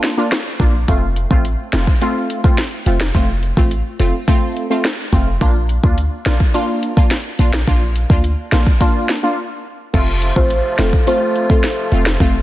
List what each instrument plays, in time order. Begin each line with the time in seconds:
Already playing: synth stab A#3 D4 F4
0.04 snare
0.17 synth stab A#3 D4 F4
0.32 cross-stick, snare
0.60 808-style bass A#1, synth stab A#3 D4 F4, kick
0.88 808-style bass F1, synth stab A3 C4 F4, kick, closed hi-hat
1.16 closed hi-hat
1.30 808-style bass A1, synth stab A3 C4 F4, kick
1.45 closed hi-hat
1.73 808-style bass F1, synth stab A3 C4 F4, snare, closed hi-hat
1.87 kick
2.01 synth stab A3 C4 F4, closed hi-hat
2.30 closed hi-hat
2.44 synth stab A3 C4 F4, kick
2.58 snare, closed hi-hat
2.86 808-style bass F1, synth stab A3 C4 F4, closed hi-hat
3.00 snare
3.14 808-style bass F1, synth stab A3 C4 F4, kick, closed hi-hat
3.43 closed hi-hat
3.57 808-style bass A1, synth stab A3 C4 F4, kick
3.71 closed hi-hat
3.99 808-style bass F1, synth stab A3 C4 F4, closed hi-hat
4.28 synth stab A3 C4 F4, kick, closed hi-hat
4.57 closed hi-hat
4.70 synth stab A3 C4 F4
4.84 snare, closed hi-hat
5.12 808-style bass F1, synth stab A3 C4 F4, kick, closed hi-hat
5.41 808-style bass A#1, synth stab A#3 D4 F4, kick, closed hi-hat
5.69 closed hi-hat
5.83 808-style bass D2, synth stab A#3 D4 F4, kick
5.98 closed hi-hat
6.26 808-style bass A#1, synth stab A#3 D4 F4, snare, closed hi-hat
6.40 kick
6.54 synth stab A#3 D4 F4, closed hi-hat
6.83 closed hi-hat
6.96 synth stab A#3 D4 F4, kick
7.11 snare, closed hi-hat
7.39 808-style bass A#1, synth stab A#3 D4 F4, closed hi-hat
7.53 snare
7.67 808-style bass A#1, synth stab A#3 D4 F4, kick, closed hi-hat
7.96 closed hi-hat
8.10 808-style bass D2, synth stab A#3 D4 F4, kick
8.24 closed hi-hat
8.52 808-style bass A#1, synth stab A#3 D4 F4, snare, closed hi-hat
8.67 kick
8.80 synth stab A#3 D4 F4, kick, closed hi-hat
9.09 snare, closed hi-hat
9.23 synth stab A#3 D4 F4
9.93 808-style bass F1, accordion C3 F3 A3 F4, synth stab A3 C4 F4, kick, closed hi-hat, crash
10.22 closed hi-hat
10.36 808-style bass A1, synth stab A3 C4 F4, marimba C5, kick
10.50 closed hi-hat
10.79 808-style bass F1, synth stab A3 C4 F4, marimba A4, snare, closed hi-hat
10.93 kick
11.07 synth stab A3 C4 F4, marimba C5, closed hi-hat
11.36 closed hi-hat
11.49 synth stab A3 C4 F4, marimba A4, kick
11.63 snare, closed hi-hat
11.92 808-style bass F1, synth stab A3 C4 F4, closed hi-hat
12.06 snare
12.20 808-style bass F1, synth stab A3 C4 F4, kick, closed hi-hat